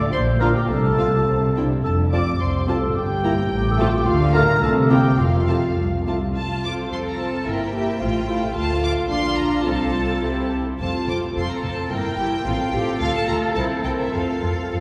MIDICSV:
0, 0, Header, 1, 8, 480
1, 0, Start_track
1, 0, Key_signature, -1, "major"
1, 0, Tempo, 568182
1, 588, Time_signature, 2, 2, 24, 8
1, 2037, Tempo, 554017
1, 3957, Tempo, 579151
1, 5397, Tempo, 554017
1, 11637, Tempo, 579710
1, 12659, End_track
2, 0, Start_track
2, 0, Title_t, "Violin section"
2, 0, Program_c, 0, 48
2, 351, Note_on_c, 0, 77, 44
2, 419, Note_off_c, 0, 77, 0
2, 836, Note_on_c, 0, 77, 43
2, 904, Note_off_c, 0, 77, 0
2, 1331, Note_on_c, 0, 79, 37
2, 1399, Note_off_c, 0, 79, 0
2, 1806, Note_on_c, 0, 81, 39
2, 1874, Note_off_c, 0, 81, 0
2, 2274, Note_on_c, 0, 81, 41
2, 2343, Note_off_c, 0, 81, 0
2, 2758, Note_on_c, 0, 82, 45
2, 2827, Note_off_c, 0, 82, 0
2, 3241, Note_on_c, 0, 81, 48
2, 3310, Note_off_c, 0, 81, 0
2, 3714, Note_on_c, 0, 81, 59
2, 3783, Note_off_c, 0, 81, 0
2, 4184, Note_on_c, 0, 82, 47
2, 4251, Note_off_c, 0, 82, 0
2, 4666, Note_on_c, 0, 81, 43
2, 4733, Note_off_c, 0, 81, 0
2, 5162, Note_on_c, 0, 81, 34
2, 5229, Note_off_c, 0, 81, 0
2, 5401, Note_on_c, 0, 81, 50
2, 5628, Note_off_c, 0, 81, 0
2, 5645, Note_on_c, 0, 86, 50
2, 5715, Note_off_c, 0, 86, 0
2, 5882, Note_on_c, 0, 84, 49
2, 5930, Note_off_c, 0, 84, 0
2, 6020, Note_on_c, 0, 82, 45
2, 6125, Note_on_c, 0, 81, 45
2, 6128, Note_off_c, 0, 82, 0
2, 6361, Note_off_c, 0, 81, 0
2, 6366, Note_on_c, 0, 79, 58
2, 7305, Note_off_c, 0, 79, 0
2, 7311, Note_on_c, 0, 81, 74
2, 7536, Note_on_c, 0, 86, 66
2, 7538, Note_off_c, 0, 81, 0
2, 7605, Note_off_c, 0, 86, 0
2, 7769, Note_on_c, 0, 84, 71
2, 8006, Note_off_c, 0, 84, 0
2, 8007, Note_on_c, 0, 82, 59
2, 8244, Note_on_c, 0, 81, 58
2, 8252, Note_off_c, 0, 82, 0
2, 8990, Note_off_c, 0, 81, 0
2, 9241, Note_on_c, 0, 81, 55
2, 9471, Note_off_c, 0, 81, 0
2, 9492, Note_on_c, 0, 86, 47
2, 9561, Note_off_c, 0, 86, 0
2, 9743, Note_on_c, 0, 84, 53
2, 9856, Note_off_c, 0, 84, 0
2, 9863, Note_on_c, 0, 82, 48
2, 9975, Note_on_c, 0, 81, 47
2, 9978, Note_off_c, 0, 82, 0
2, 10206, Note_off_c, 0, 81, 0
2, 10215, Note_on_c, 0, 79, 73
2, 11136, Note_off_c, 0, 79, 0
2, 11151, Note_on_c, 0, 77, 81
2, 11268, Note_off_c, 0, 77, 0
2, 11277, Note_on_c, 0, 81, 67
2, 11386, Note_on_c, 0, 82, 70
2, 11392, Note_off_c, 0, 81, 0
2, 11456, Note_off_c, 0, 82, 0
2, 11628, Note_on_c, 0, 81, 63
2, 11694, Note_off_c, 0, 81, 0
2, 11862, Note_on_c, 0, 79, 49
2, 11911, Note_off_c, 0, 79, 0
2, 11993, Note_on_c, 0, 76, 50
2, 12109, Note_off_c, 0, 76, 0
2, 12111, Note_on_c, 0, 77, 54
2, 12659, Note_off_c, 0, 77, 0
2, 12659, End_track
3, 0, Start_track
3, 0, Title_t, "Violin section"
3, 0, Program_c, 1, 48
3, 108, Note_on_c, 1, 84, 72
3, 176, Note_off_c, 1, 84, 0
3, 343, Note_on_c, 1, 82, 65
3, 392, Note_off_c, 1, 82, 0
3, 467, Note_on_c, 1, 79, 53
3, 573, Note_on_c, 1, 81, 62
3, 586, Note_off_c, 1, 79, 0
3, 1312, Note_off_c, 1, 81, 0
3, 1562, Note_on_c, 1, 81, 56
3, 1630, Note_off_c, 1, 81, 0
3, 1797, Note_on_c, 1, 86, 63
3, 2030, Note_off_c, 1, 86, 0
3, 2033, Note_on_c, 1, 84, 52
3, 2273, Note_off_c, 1, 84, 0
3, 2276, Note_on_c, 1, 81, 58
3, 2346, Note_off_c, 1, 81, 0
3, 2512, Note_on_c, 1, 79, 69
3, 3456, Note_off_c, 1, 79, 0
3, 3475, Note_on_c, 1, 77, 82
3, 3706, Note_on_c, 1, 82, 85
3, 3715, Note_off_c, 1, 77, 0
3, 3952, Note_off_c, 1, 82, 0
3, 3962, Note_on_c, 1, 81, 67
3, 4028, Note_off_c, 1, 81, 0
3, 4188, Note_on_c, 1, 79, 67
3, 4423, Note_off_c, 1, 79, 0
3, 4436, Note_on_c, 1, 77, 58
3, 5160, Note_off_c, 1, 77, 0
3, 5637, Note_on_c, 1, 69, 34
3, 5641, Note_on_c, 1, 72, 33
3, 6109, Note_off_c, 1, 69, 0
3, 6111, Note_off_c, 1, 72, 0
3, 6124, Note_on_c, 1, 72, 34
3, 6125, Note_on_c, 1, 69, 35
3, 6356, Note_off_c, 1, 69, 0
3, 6356, Note_off_c, 1, 72, 0
3, 6358, Note_on_c, 1, 76, 32
3, 6363, Note_on_c, 1, 70, 34
3, 6586, Note_off_c, 1, 70, 0
3, 6587, Note_off_c, 1, 76, 0
3, 6596, Note_on_c, 1, 70, 38
3, 6597, Note_on_c, 1, 76, 38
3, 6824, Note_on_c, 1, 72, 38
3, 6828, Note_off_c, 1, 70, 0
3, 6828, Note_off_c, 1, 76, 0
3, 6828, Note_on_c, 1, 65, 38
3, 7053, Note_off_c, 1, 72, 0
3, 7057, Note_off_c, 1, 65, 0
3, 7064, Note_on_c, 1, 72, 41
3, 7067, Note_on_c, 1, 65, 39
3, 7296, Note_off_c, 1, 72, 0
3, 7297, Note_off_c, 1, 65, 0
3, 7307, Note_on_c, 1, 65, 50
3, 7307, Note_on_c, 1, 77, 49
3, 7744, Note_off_c, 1, 65, 0
3, 7744, Note_off_c, 1, 77, 0
3, 7771, Note_on_c, 1, 65, 50
3, 7771, Note_on_c, 1, 77, 48
3, 8244, Note_off_c, 1, 65, 0
3, 8244, Note_off_c, 1, 77, 0
3, 8253, Note_on_c, 1, 65, 40
3, 8255, Note_on_c, 1, 72, 40
3, 8736, Note_off_c, 1, 65, 0
3, 8741, Note_off_c, 1, 72, 0
3, 8747, Note_on_c, 1, 67, 38
3, 8751, Note_on_c, 1, 72, 36
3, 9059, Note_off_c, 1, 67, 0
3, 9062, Note_off_c, 1, 72, 0
3, 9244, Note_on_c, 1, 69, 34
3, 9245, Note_on_c, 1, 72, 36
3, 9467, Note_off_c, 1, 69, 0
3, 9468, Note_off_c, 1, 72, 0
3, 9478, Note_on_c, 1, 69, 37
3, 9479, Note_on_c, 1, 72, 34
3, 9722, Note_off_c, 1, 69, 0
3, 9723, Note_off_c, 1, 72, 0
3, 9733, Note_on_c, 1, 72, 36
3, 9734, Note_on_c, 1, 69, 36
3, 9961, Note_off_c, 1, 69, 0
3, 9965, Note_off_c, 1, 72, 0
3, 9971, Note_on_c, 1, 69, 39
3, 9976, Note_on_c, 1, 72, 38
3, 10203, Note_off_c, 1, 69, 0
3, 10206, Note_off_c, 1, 72, 0
3, 10208, Note_on_c, 1, 79, 41
3, 10209, Note_on_c, 1, 70, 42
3, 10434, Note_off_c, 1, 79, 0
3, 10437, Note_off_c, 1, 70, 0
3, 10445, Note_on_c, 1, 79, 44
3, 10447, Note_on_c, 1, 70, 42
3, 10676, Note_off_c, 1, 79, 0
3, 10677, Note_off_c, 1, 70, 0
3, 10683, Note_on_c, 1, 69, 48
3, 10688, Note_on_c, 1, 77, 45
3, 10910, Note_off_c, 1, 69, 0
3, 10912, Note_off_c, 1, 77, 0
3, 10920, Note_on_c, 1, 69, 49
3, 10922, Note_on_c, 1, 77, 48
3, 11145, Note_off_c, 1, 77, 0
3, 11149, Note_off_c, 1, 69, 0
3, 11156, Note_on_c, 1, 77, 51
3, 11160, Note_on_c, 1, 69, 55
3, 11388, Note_off_c, 1, 77, 0
3, 11390, Note_off_c, 1, 69, 0
3, 11402, Note_on_c, 1, 77, 50
3, 11404, Note_on_c, 1, 69, 49
3, 11635, Note_off_c, 1, 77, 0
3, 11636, Note_off_c, 1, 69, 0
3, 11642, Note_on_c, 1, 70, 50
3, 11643, Note_on_c, 1, 72, 50
3, 11865, Note_off_c, 1, 70, 0
3, 11867, Note_off_c, 1, 72, 0
3, 11875, Note_on_c, 1, 70, 44
3, 11877, Note_on_c, 1, 72, 41
3, 12103, Note_off_c, 1, 72, 0
3, 12108, Note_off_c, 1, 70, 0
3, 12113, Note_on_c, 1, 72, 36
3, 12116, Note_on_c, 1, 69, 37
3, 12344, Note_off_c, 1, 72, 0
3, 12346, Note_off_c, 1, 69, 0
3, 12354, Note_on_c, 1, 72, 31
3, 12356, Note_on_c, 1, 69, 32
3, 12590, Note_off_c, 1, 72, 0
3, 12591, Note_off_c, 1, 69, 0
3, 12604, Note_on_c, 1, 72, 31
3, 12606, Note_on_c, 1, 69, 31
3, 12659, Note_off_c, 1, 69, 0
3, 12659, Note_off_c, 1, 72, 0
3, 12659, End_track
4, 0, Start_track
4, 0, Title_t, "Clarinet"
4, 0, Program_c, 2, 71
4, 109, Note_on_c, 2, 72, 87
4, 340, Note_on_c, 2, 70, 74
4, 352, Note_off_c, 2, 72, 0
4, 463, Note_off_c, 2, 70, 0
4, 468, Note_on_c, 2, 67, 64
4, 522, Note_off_c, 2, 67, 0
4, 578, Note_on_c, 2, 69, 66
4, 1300, Note_off_c, 2, 69, 0
4, 1548, Note_on_c, 2, 69, 61
4, 1659, Note_off_c, 2, 69, 0
4, 1796, Note_on_c, 2, 74, 67
4, 1903, Note_off_c, 2, 74, 0
4, 2029, Note_on_c, 2, 72, 60
4, 2281, Note_on_c, 2, 69, 69
4, 2294, Note_off_c, 2, 72, 0
4, 2512, Note_on_c, 2, 67, 76
4, 2525, Note_off_c, 2, 69, 0
4, 3162, Note_on_c, 2, 69, 74
4, 3175, Note_off_c, 2, 67, 0
4, 3240, Note_on_c, 2, 67, 75
4, 3253, Note_off_c, 2, 69, 0
4, 3314, Note_on_c, 2, 65, 83
4, 3327, Note_off_c, 2, 67, 0
4, 3386, Note_on_c, 2, 67, 84
4, 3399, Note_off_c, 2, 65, 0
4, 3459, Note_off_c, 2, 67, 0
4, 3465, Note_on_c, 2, 65, 90
4, 3575, Note_off_c, 2, 65, 0
4, 3710, Note_on_c, 2, 70, 100
4, 3954, Note_on_c, 2, 69, 82
4, 3967, Note_off_c, 2, 70, 0
4, 4182, Note_on_c, 2, 67, 79
4, 4195, Note_off_c, 2, 69, 0
4, 4424, Note_on_c, 2, 65, 65
4, 4436, Note_off_c, 2, 67, 0
4, 5154, Note_off_c, 2, 65, 0
4, 12659, End_track
5, 0, Start_track
5, 0, Title_t, "Cello section"
5, 0, Program_c, 3, 48
5, 117, Note_on_c, 3, 46, 65
5, 510, Note_off_c, 3, 46, 0
5, 592, Note_on_c, 3, 48, 52
5, 998, Note_off_c, 3, 48, 0
5, 1082, Note_on_c, 3, 48, 53
5, 1483, Note_off_c, 3, 48, 0
5, 1563, Note_on_c, 3, 41, 51
5, 1959, Note_off_c, 3, 41, 0
5, 2038, Note_on_c, 3, 36, 49
5, 2434, Note_off_c, 3, 36, 0
5, 2510, Note_on_c, 3, 43, 57
5, 2912, Note_off_c, 3, 43, 0
5, 2997, Note_on_c, 3, 45, 63
5, 3397, Note_off_c, 3, 45, 0
5, 3480, Note_on_c, 3, 50, 77
5, 3878, Note_off_c, 3, 50, 0
5, 3954, Note_on_c, 3, 48, 73
5, 4347, Note_off_c, 3, 48, 0
5, 4430, Note_on_c, 3, 41, 60
5, 4832, Note_off_c, 3, 41, 0
5, 4910, Note_on_c, 3, 36, 44
5, 5317, Note_off_c, 3, 36, 0
5, 5392, Note_on_c, 3, 65, 36
5, 5846, Note_off_c, 3, 65, 0
5, 5884, Note_on_c, 3, 69, 40
5, 6359, Note_on_c, 3, 70, 44
5, 6360, Note_off_c, 3, 69, 0
5, 6595, Note_on_c, 3, 67, 45
5, 6597, Note_off_c, 3, 70, 0
5, 6826, Note_on_c, 3, 65, 43
5, 6827, Note_off_c, 3, 67, 0
5, 7059, Note_off_c, 3, 65, 0
5, 7061, Note_on_c, 3, 64, 45
5, 7299, Note_off_c, 3, 64, 0
5, 7299, Note_on_c, 3, 65, 46
5, 7758, Note_off_c, 3, 65, 0
5, 7768, Note_on_c, 3, 65, 45
5, 8243, Note_off_c, 3, 65, 0
5, 8249, Note_on_c, 3, 69, 42
5, 8993, Note_off_c, 3, 69, 0
5, 9241, Note_on_c, 3, 65, 37
5, 9697, Note_off_c, 3, 65, 0
5, 9733, Note_on_c, 3, 69, 40
5, 10209, Note_off_c, 3, 69, 0
5, 10212, Note_on_c, 3, 70, 43
5, 10447, Note_off_c, 3, 70, 0
5, 10450, Note_on_c, 3, 67, 48
5, 10519, Note_off_c, 3, 67, 0
5, 10685, Note_on_c, 3, 65, 44
5, 10754, Note_off_c, 3, 65, 0
5, 10916, Note_on_c, 3, 67, 58
5, 11147, Note_off_c, 3, 67, 0
5, 11148, Note_on_c, 3, 69, 63
5, 12090, Note_off_c, 3, 69, 0
5, 12118, Note_on_c, 3, 69, 41
5, 12541, Note_off_c, 3, 69, 0
5, 12596, Note_on_c, 3, 69, 34
5, 12659, Note_off_c, 3, 69, 0
5, 12659, End_track
6, 0, Start_track
6, 0, Title_t, "Viola section"
6, 0, Program_c, 4, 48
6, 340, Note_on_c, 4, 62, 45
6, 341, Note_on_c, 4, 65, 47
6, 407, Note_off_c, 4, 62, 0
6, 409, Note_off_c, 4, 65, 0
6, 828, Note_on_c, 4, 60, 42
6, 830, Note_on_c, 4, 65, 43
6, 896, Note_off_c, 4, 60, 0
6, 897, Note_off_c, 4, 65, 0
6, 1323, Note_on_c, 4, 60, 42
6, 1323, Note_on_c, 4, 64, 39
6, 1391, Note_off_c, 4, 60, 0
6, 1391, Note_off_c, 4, 64, 0
6, 1797, Note_on_c, 4, 65, 42
6, 1800, Note_on_c, 4, 60, 44
6, 1865, Note_off_c, 4, 65, 0
6, 1868, Note_off_c, 4, 60, 0
6, 2262, Note_on_c, 4, 60, 43
6, 2267, Note_on_c, 4, 65, 46
6, 2332, Note_off_c, 4, 60, 0
6, 2336, Note_off_c, 4, 65, 0
6, 2757, Note_on_c, 4, 58, 50
6, 2762, Note_on_c, 4, 64, 52
6, 2826, Note_off_c, 4, 58, 0
6, 2831, Note_off_c, 4, 64, 0
6, 3237, Note_on_c, 4, 60, 59
6, 3238, Note_on_c, 4, 65, 59
6, 3307, Note_off_c, 4, 60, 0
6, 3307, Note_off_c, 4, 65, 0
6, 3708, Note_on_c, 4, 65, 60
6, 3709, Note_on_c, 4, 57, 59
6, 3778, Note_off_c, 4, 65, 0
6, 3779, Note_off_c, 4, 57, 0
6, 4185, Note_on_c, 4, 60, 54
6, 4185, Note_on_c, 4, 64, 55
6, 4251, Note_off_c, 4, 60, 0
6, 4251, Note_off_c, 4, 64, 0
6, 4663, Note_on_c, 4, 60, 41
6, 4666, Note_on_c, 4, 65, 41
6, 4730, Note_off_c, 4, 60, 0
6, 4732, Note_off_c, 4, 65, 0
6, 5150, Note_on_c, 4, 60, 36
6, 5155, Note_on_c, 4, 65, 35
6, 5216, Note_off_c, 4, 60, 0
6, 5221, Note_off_c, 4, 65, 0
6, 5638, Note_on_c, 4, 60, 31
6, 5640, Note_on_c, 4, 65, 30
6, 6109, Note_off_c, 4, 60, 0
6, 6111, Note_off_c, 4, 65, 0
6, 6119, Note_on_c, 4, 60, 31
6, 6120, Note_on_c, 4, 65, 33
6, 6354, Note_off_c, 4, 60, 0
6, 6354, Note_off_c, 4, 65, 0
6, 6358, Note_on_c, 4, 58, 34
6, 6360, Note_on_c, 4, 64, 36
6, 6584, Note_off_c, 4, 64, 0
6, 6588, Note_off_c, 4, 58, 0
6, 6594, Note_on_c, 4, 64, 37
6, 6598, Note_on_c, 4, 58, 36
6, 6827, Note_off_c, 4, 64, 0
6, 6829, Note_off_c, 4, 58, 0
6, 6829, Note_on_c, 4, 65, 42
6, 6831, Note_on_c, 4, 57, 39
6, 7044, Note_off_c, 4, 57, 0
6, 7051, Note_off_c, 4, 65, 0
6, 7055, Note_on_c, 4, 57, 41
6, 7061, Note_on_c, 4, 65, 41
6, 7286, Note_off_c, 4, 65, 0
6, 7287, Note_off_c, 4, 57, 0
6, 7296, Note_on_c, 4, 65, 51
6, 7297, Note_on_c, 4, 57, 48
6, 7738, Note_off_c, 4, 65, 0
6, 7739, Note_off_c, 4, 57, 0
6, 7768, Note_on_c, 4, 62, 46
6, 7768, Note_on_c, 4, 65, 50
6, 8237, Note_off_c, 4, 65, 0
6, 8248, Note_on_c, 4, 65, 42
6, 8251, Note_on_c, 4, 60, 43
6, 8252, Note_off_c, 4, 62, 0
6, 8732, Note_off_c, 4, 60, 0
6, 8734, Note_off_c, 4, 65, 0
6, 8742, Note_on_c, 4, 60, 38
6, 8742, Note_on_c, 4, 64, 37
6, 9057, Note_off_c, 4, 60, 0
6, 9063, Note_off_c, 4, 64, 0
6, 9236, Note_on_c, 4, 65, 37
6, 9237, Note_on_c, 4, 60, 36
6, 9472, Note_off_c, 4, 65, 0
6, 9474, Note_off_c, 4, 60, 0
6, 9482, Note_on_c, 4, 65, 31
6, 9484, Note_on_c, 4, 60, 36
6, 9709, Note_off_c, 4, 60, 0
6, 9709, Note_off_c, 4, 65, 0
6, 9719, Note_on_c, 4, 60, 35
6, 9719, Note_on_c, 4, 65, 37
6, 9951, Note_off_c, 4, 60, 0
6, 9954, Note_off_c, 4, 65, 0
6, 9961, Note_on_c, 4, 60, 34
6, 9964, Note_on_c, 4, 65, 34
6, 10198, Note_off_c, 4, 60, 0
6, 10199, Note_on_c, 4, 58, 44
6, 10200, Note_off_c, 4, 65, 0
6, 10200, Note_on_c, 4, 64, 41
6, 10432, Note_off_c, 4, 64, 0
6, 10435, Note_off_c, 4, 58, 0
6, 10442, Note_on_c, 4, 64, 40
6, 10445, Note_on_c, 4, 58, 43
6, 10675, Note_off_c, 4, 64, 0
6, 10676, Note_off_c, 4, 58, 0
6, 10677, Note_on_c, 4, 65, 46
6, 10681, Note_on_c, 4, 60, 48
6, 10908, Note_off_c, 4, 60, 0
6, 10909, Note_off_c, 4, 65, 0
6, 10919, Note_on_c, 4, 60, 44
6, 10920, Note_on_c, 4, 65, 45
6, 11148, Note_off_c, 4, 60, 0
6, 11149, Note_off_c, 4, 65, 0
6, 11159, Note_on_c, 4, 57, 54
6, 11160, Note_on_c, 4, 65, 53
6, 11378, Note_off_c, 4, 57, 0
6, 11381, Note_off_c, 4, 65, 0
6, 11388, Note_on_c, 4, 57, 49
6, 11392, Note_on_c, 4, 65, 47
6, 11622, Note_on_c, 4, 60, 49
6, 11622, Note_on_c, 4, 64, 49
6, 11628, Note_off_c, 4, 57, 0
6, 11630, Note_off_c, 4, 65, 0
6, 11848, Note_off_c, 4, 64, 0
6, 11850, Note_off_c, 4, 60, 0
6, 11858, Note_on_c, 4, 64, 42
6, 11860, Note_on_c, 4, 60, 41
6, 12095, Note_off_c, 4, 60, 0
6, 12099, Note_off_c, 4, 64, 0
6, 12101, Note_on_c, 4, 65, 37
6, 12105, Note_on_c, 4, 60, 38
6, 12332, Note_off_c, 4, 65, 0
6, 12334, Note_off_c, 4, 60, 0
6, 12342, Note_on_c, 4, 65, 30
6, 12344, Note_on_c, 4, 60, 31
6, 12575, Note_off_c, 4, 60, 0
6, 12579, Note_off_c, 4, 65, 0
6, 12585, Note_on_c, 4, 60, 31
6, 12589, Note_on_c, 4, 65, 32
6, 12659, Note_off_c, 4, 60, 0
6, 12659, Note_off_c, 4, 65, 0
6, 12659, End_track
7, 0, Start_track
7, 0, Title_t, "French horn section"
7, 0, Program_c, 5, 60
7, 349, Note_on_c, 5, 62, 59
7, 351, Note_on_c, 5, 65, 57
7, 432, Note_off_c, 5, 62, 0
7, 433, Note_off_c, 5, 65, 0
7, 833, Note_on_c, 5, 60, 49
7, 837, Note_on_c, 5, 65, 48
7, 918, Note_off_c, 5, 60, 0
7, 921, Note_off_c, 5, 65, 0
7, 1078, Note_on_c, 5, 60, 52
7, 1187, Note_off_c, 5, 60, 0
7, 1329, Note_on_c, 5, 62, 55
7, 1436, Note_off_c, 5, 62, 0
7, 1788, Note_on_c, 5, 65, 50
7, 1790, Note_on_c, 5, 60, 51
7, 1875, Note_off_c, 5, 65, 0
7, 1876, Note_off_c, 5, 60, 0
7, 2260, Note_on_c, 5, 65, 51
7, 2261, Note_on_c, 5, 60, 55
7, 2348, Note_off_c, 5, 65, 0
7, 2349, Note_off_c, 5, 60, 0
7, 2741, Note_on_c, 5, 58, 54
7, 2742, Note_on_c, 5, 64, 58
7, 2829, Note_off_c, 5, 58, 0
7, 2830, Note_off_c, 5, 64, 0
7, 3217, Note_on_c, 5, 57, 72
7, 3221, Note_on_c, 5, 65, 69
7, 3308, Note_off_c, 5, 57, 0
7, 3310, Note_off_c, 5, 65, 0
7, 3693, Note_on_c, 5, 57, 69
7, 3693, Note_on_c, 5, 65, 69
7, 3785, Note_off_c, 5, 57, 0
7, 3785, Note_off_c, 5, 65, 0
7, 4175, Note_on_c, 5, 58, 65
7, 4177, Note_on_c, 5, 64, 61
7, 4263, Note_off_c, 5, 58, 0
7, 4264, Note_off_c, 5, 64, 0
7, 4661, Note_on_c, 5, 57, 47
7, 4661, Note_on_c, 5, 65, 49
7, 4748, Note_off_c, 5, 65, 0
7, 4749, Note_off_c, 5, 57, 0
7, 5151, Note_on_c, 5, 57, 45
7, 5156, Note_on_c, 5, 65, 46
7, 5238, Note_off_c, 5, 57, 0
7, 5241, Note_off_c, 5, 65, 0
7, 12659, End_track
8, 0, Start_track
8, 0, Title_t, "Double bass section"
8, 0, Program_c, 6, 48
8, 116, Note_on_c, 6, 34, 61
8, 509, Note_off_c, 6, 34, 0
8, 593, Note_on_c, 6, 36, 60
8, 998, Note_off_c, 6, 36, 0
8, 1080, Note_on_c, 6, 36, 50
8, 1482, Note_off_c, 6, 36, 0
8, 1563, Note_on_c, 6, 29, 55
8, 1959, Note_off_c, 6, 29, 0
8, 2033, Note_on_c, 6, 36, 50
8, 2432, Note_off_c, 6, 36, 0
8, 2513, Note_on_c, 6, 31, 60
8, 2914, Note_off_c, 6, 31, 0
8, 2989, Note_on_c, 6, 33, 70
8, 3393, Note_off_c, 6, 33, 0
8, 3471, Note_on_c, 6, 38, 78
8, 3873, Note_off_c, 6, 38, 0
8, 3953, Note_on_c, 6, 36, 73
8, 4346, Note_off_c, 6, 36, 0
8, 4423, Note_on_c, 6, 29, 59
8, 4829, Note_off_c, 6, 29, 0
8, 4903, Note_on_c, 6, 36, 50
8, 5313, Note_off_c, 6, 36, 0
8, 5390, Note_on_c, 6, 41, 45
8, 5801, Note_off_c, 6, 41, 0
8, 5879, Note_on_c, 6, 41, 44
8, 6279, Note_off_c, 6, 41, 0
8, 6355, Note_on_c, 6, 31, 48
8, 6754, Note_off_c, 6, 31, 0
8, 6830, Note_on_c, 6, 33, 50
8, 7224, Note_off_c, 6, 33, 0
8, 7302, Note_on_c, 6, 38, 49
8, 7742, Note_off_c, 6, 38, 0
8, 7765, Note_on_c, 6, 34, 49
8, 8241, Note_off_c, 6, 34, 0
8, 8251, Note_on_c, 6, 36, 43
8, 8737, Note_off_c, 6, 36, 0
8, 8747, Note_on_c, 6, 36, 38
8, 9060, Note_off_c, 6, 36, 0
8, 9243, Note_on_c, 6, 29, 40
8, 9313, Note_off_c, 6, 29, 0
8, 9490, Note_on_c, 6, 29, 39
8, 9560, Note_off_c, 6, 29, 0
8, 9734, Note_on_c, 6, 29, 43
8, 9803, Note_off_c, 6, 29, 0
8, 9970, Note_on_c, 6, 29, 41
8, 10039, Note_off_c, 6, 29, 0
8, 10204, Note_on_c, 6, 31, 48
8, 10273, Note_off_c, 6, 31, 0
8, 10441, Note_on_c, 6, 31, 48
8, 10511, Note_off_c, 6, 31, 0
8, 10676, Note_on_c, 6, 33, 55
8, 10745, Note_off_c, 6, 33, 0
8, 10918, Note_on_c, 6, 33, 52
8, 10987, Note_off_c, 6, 33, 0
8, 11149, Note_on_c, 6, 38, 62
8, 11218, Note_off_c, 6, 38, 0
8, 11389, Note_on_c, 6, 38, 54
8, 11459, Note_off_c, 6, 38, 0
8, 11632, Note_on_c, 6, 36, 52
8, 11699, Note_off_c, 6, 36, 0
8, 11867, Note_on_c, 6, 36, 47
8, 11933, Note_off_c, 6, 36, 0
8, 12108, Note_on_c, 6, 41, 40
8, 12174, Note_off_c, 6, 41, 0
8, 12352, Note_on_c, 6, 41, 33
8, 12418, Note_off_c, 6, 41, 0
8, 12591, Note_on_c, 6, 41, 32
8, 12657, Note_off_c, 6, 41, 0
8, 12659, End_track
0, 0, End_of_file